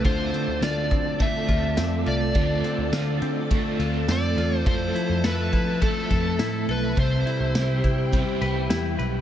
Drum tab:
RD |xxxxxxxx|xxxxxxxx|xxxxxxxx|xxxxxxxx|
TB |--x---x-|--x---x-|--x---x-|--x---x-|
SD |--o---o-|--o---o-|--o---o-|--o---o-|
BD |o--ooo--|o---o---|o--ooo--|o--oo---|